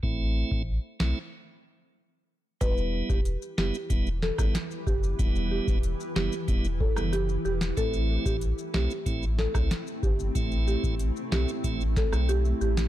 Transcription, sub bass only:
\new Staff \with { instrumentName = "Sub bass" } { \clef bass \time 4/4 \key e \minor \tempo 4 = 93 a,,8. a,,8 r16 b,,16 r2 r16 | e,,8. e,,8 r16 fis,,16 r16 e,,8. g,,16 r8 fis,,8 | e,,8. e,,8 r16 fis,,16 r16 e,,8. fis,,8. e,,8 | a,,8. a,,8 r16 b,,16 r16 a,,8. c,16 r8 g,,8 |
a,,8. a,,8 r16 b,,16 r16 a,,8. b,,8. a,,8 | }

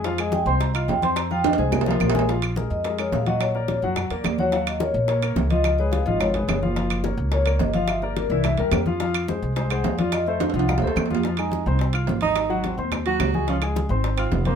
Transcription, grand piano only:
\new Staff \with { instrumentName = "Grand piano" } { \time 4/4 \key f \minor \tempo 4 = 214 <f f' f''>8 <aes aes' aes''>4 <c' c'' c'''>4 <f' f'' f'''>4 <c' c'' c'''>8~ | <c' c'' c'''>8 <f f' f''>4 <aes aes' aes''>4 <f f' f''>4 <aes aes' aes''>8 | \key bes \minor <f f' f''>4 <aes aes' bes'>4 <aes aes' bes'>8 <aes aes' bes'>4 <ges ges' ges''>8~ | <ges ges' ges''>8 <bes bes' d''>4 <fis fis' fis''>4 <bes bes' d''>4 <fis fis' fis''>8 |
<ges ges' ges''>4 <bes bes' des''>4 <bes bes' des''>8 <bes bes' des''>4 <f f' f''>8~ | <f f' f''>8 <aes aes' ces''>4 <f f' f''>4 <aes aes' ces''>4 <f f' f''>8 | <f f' f''>4 <bes bes' des''>4 <bes bes' des''>8 <bes bes' des''>4 <f f' f''>8~ | <f f' f''>8 <bes bes' d''>4 <e e' e''>4 <g g' bes'>4 <f f' f''>8 |
<f f' f''>4 <aes aes' c''>4 <aes aes' c''>8 <aes aes' c''>4 <f f' f''>8~ | <f f' f''>8 <a a' c''>4 <f f' f''>4 <a a' c''>4 <f f' f''>8 | \key f \minor <f f' f''>8 <aes aes' aes''>4 <c' c'' c'''>4 <f' f'' f'''>4 <ees' ees'' ees'''>8~ | <ees' ees'' ees'''>8 <ges ges' ges''>4 <c' c'' c'''>4 <ges ges' ges''>4 <aes aes' aes''>8 |
<f f' f''>8 <aes aes' aes''>4 <c' c'' c'''>4 <f' f'' f'''>4 <c' c'' c'''>8 | }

